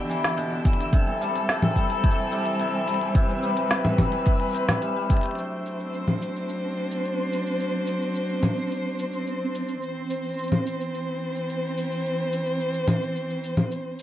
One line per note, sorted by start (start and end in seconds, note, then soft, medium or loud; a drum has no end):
0.00 0.22 D3 medium
0.00 0.89 E3 medium
0.00 0.35 B3 medium
0.00 0.90 D4 medium
0.00 0.90 G4 medium
0.00 5.39 E5 medium
0.00 5.39 E6 medium
0.09 0.29 E3 medium
0.09 shaker medium
0.23 0.43 D3 medium
0.23 snare medium
0.23 closed hi-hat medium
0.23 shaker soft
0.37 0.57 B2 loud
0.37 closed hi-hat soft
0.37 shaker soft
0.51 0.78 D3 medium
0.65 0.84 E3 medium
0.65 kick loud
0.65 closed hi-hat soft
0.65 shaker medium
0.73 closed hi-hat medium
0.79 0.98 D3 medium
0.79 closed hi-hat soft
0.79 shaker soft
0.93 1.47 C3 medium
0.93 5.33 G3 medium
0.93 5.33 C4 medium
0.93 3.13 A4 medium
0.93 kick loud
0.93 closed hi-hat medium
0.93 shaker soft
1.07 1.34 E3 medium
1.21 1.75 G3 medium
1.21 shaker medium
1.35 1.54 E3 medium
1.35 closed hi-hat soft
1.35 shaker soft
1.49 2.03 C3 loud
1.49 snare medium
1.49 closed hi-hat medium
1.49 shaker soft
1.62 1.89 E3 medium
1.62 low conga medium
1.62 shaker soft
1.76 2.30 G3 medium
1.76 kick medium
1.76 shaker medium
1.90 2.09 E3 medium
1.90 closed hi-hat soft
1.90 shaker soft
2.04 2.59 C3 medium
2.04 kick loud
2.04 closed hi-hat medium
2.11 shaker soft
2.18 2.45 E3 medium
2.32 2.86 G3 medium
2.32 shaker medium
2.46 2.65 E3 medium
2.46 closed hi-hat medium
2.46 shaker soft
2.59 3.14 C3 medium
2.59 closed hi-hat soft
2.59 shaker soft
2.74 3.00 E3 medium
2.87 3.41 G3 medium
2.87 closed hi-hat soft
2.87 shaker medium
2.94 closed hi-hat medium
3.01 3.21 E3 medium
3.01 closed hi-hat soft
3.15 3.70 C3 medium
3.15 5.36 B4 medium
3.15 kick loud
3.15 closed hi-hat medium
3.15 shaker soft
3.29 3.56 E3 medium
3.29 shaker soft
3.43 3.97 G3 medium
3.43 shaker medium
3.57 3.76 E3 medium
3.57 closed hi-hat soft
3.57 shaker soft
3.71 4.25 C3 loud
3.71 snare medium
3.71 closed hi-hat medium
3.71 shaker soft
3.84 4.11 E3 medium
3.84 low conga medium
3.84 shaker soft
3.98 4.67 G3 medium
3.98 kick medium
3.98 low conga medium
3.98 shaker medium
4.12 4.32 E3 medium
4.12 closed hi-hat soft
4.12 shaker soft
4.26 5.09 C3 medium
4.26 kick loud
4.26 closed hi-hat medium
4.26 shaker soft
4.40 5.15 E3 medium
4.40 closed hi-hat soft
4.40 shaker soft
4.43 shaker soft
4.45 shaker soft
4.48 shaker soft
4.51 shaker soft
4.53 8.54 C4 medium
4.53 closed hi-hat soft
4.53 shaker soft
4.55 shaker medium
4.68 4.81 G3 medium
4.68 snare medium
4.68 closed hi-hat medium
4.68 low conga medium
4.68 shaker soft
4.82 4.95 G3 medium
4.82 closed hi-hat soft
4.82 shaker soft
4.96 5.43 G3 medium
5.10 5.43 C3 medium
5.10 kick loud
5.10 closed hi-hat soft
5.10 shaker medium
5.17 closed hi-hat medium
5.21 closed hi-hat soft
5.23 9.68 A3 medium
5.23 closed hi-hat soft
5.23 shaker soft
5.26 closed hi-hat soft
5.31 closed hi-hat soft
5.35 9.78 F#3 medium
5.35 14.03 C4 medium
5.35 9.78 D4 medium
5.35 9.78 C5 medium
5.35 14.03 C6 medium
5.35 closed hi-hat soft
5.35 shaker soft
5.41 closed hi-hat soft
5.66 shaker medium
5.80 shaker soft
5.94 shaker soft
6.08 low conga soft
6.08 shaker soft
6.22 shaker medium
6.36 shaker soft
6.49 shaker soft
6.91 shaker medium
7.05 shaker soft
7.33 shaker medium
7.47 shaker soft
7.51 shaker soft
7.55 shaker soft
7.60 shaker soft
7.87 shaker medium
8.02 shaker soft
8.15 shaker soft
8.30 shaker soft
8.43 low conga soft
8.43 shaker medium
8.57 shaker soft
8.67 shaker soft
8.72 shaker soft
8.99 shaker medium
9.13 shaker soft
9.27 shaker soft
9.55 shaker medium
9.68 shaker soft
9.82 14.03 E3 medium
9.82 14.03 C4 medium
9.82 14.03 C5 medium
9.82 shaker soft
10.10 shaker medium
10.24 shaker soft
10.29 shaker soft
10.33 shaker soft
10.38 shaker soft
10.44 shaker soft
10.48 shaker soft
10.52 low conga soft
10.52 shaker soft
10.67 shaker medium
10.81 shaker soft
10.95 shaker soft
11.36 shaker soft
11.50 shaker soft
11.78 shaker medium
11.92 shaker soft
12.06 shaker soft
12.33 shaker medium
12.46 shaker soft
12.60 shaker soft
12.74 shaker soft
12.88 low conga medium
12.88 shaker medium
13.02 shaker soft
13.16 shaker soft
13.30 shaker soft
13.44 shaker medium
13.57 low conga medium
13.57 shaker soft
13.71 shaker soft
13.99 shaker medium